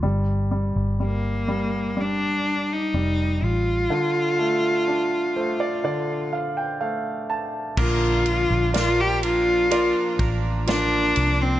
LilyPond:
<<
  \new Staff \with { instrumentName = "Grand piano" } { \time 4/4 \key bes \major \tempo 4 = 62 r1 | r4. c''16 d''16 d''8 f''16 g''16 f''8 a''8 | r1 | }
  \new Staff \with { instrumentName = "Grand piano" } { \time 4/4 \key bes \major g8 g8 g8 g8 g4 g4 | d8 a8 d'8 a8 d4 a4 | bes4 <f' bes' d''>4 <f' bes' d''>4 <f' bes' d''>4 | }
  \new Staff \with { instrumentName = "Cello" } { \time 4/4 \key bes \major r4 bes4 d'8. ees'8. f'8~ | f'2~ f'8 r4. | f'4 f'16 g'16 f'4 r8 d'8. c'16 | }
  \new Staff \with { instrumentName = "Clean electric guitar" } { \time 4/4 \key bes \major r1 | r1 | <bes, d f bes d' bes'>4 <f bes d' bes'>8 <f bes d' bes'>8 <f bes d' bes'>8 <f bes d' bes'>8 <f bes d' bes'>4 | }
  \new Staff \with { instrumentName = "Fingered electric bass" } { \clef bass \time 4/4 \key bes \major g,,8. g,,2~ g,,16 f,,8 a,,8 | r1 | bes,,8. bes,,4. r16 a,,4 c,8 | }
  \new DrumStaff \with { instrumentName = "Drums" } \drummode { \time 4/4 r4 r4 r4 r4 | r4 r4 r4 r4 | <cymc bd>8 cymr8 <cymr sn>8 cymr8 cymr8 <bd cymr>8 <cymr sn>8 cymr8 | }
>>